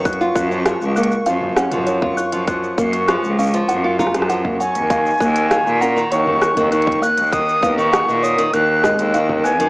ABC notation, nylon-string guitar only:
X:1
M:4/4
L:1/16
Q:1/4=99
K:F#
V:1 name="Nylon-string guitar" clef=bass
z E2 E, E,2 A,2 E,2 C E,2 E2 E, | E,2 A,2 E,2 C E,2 E E E, E, A, F, z | D,2 A,2 D,2 C D,2 D,2 D, D,2 A,2 | D,2 B, D,2 D,2 D, D,2 G,2 D,2 B, D, |]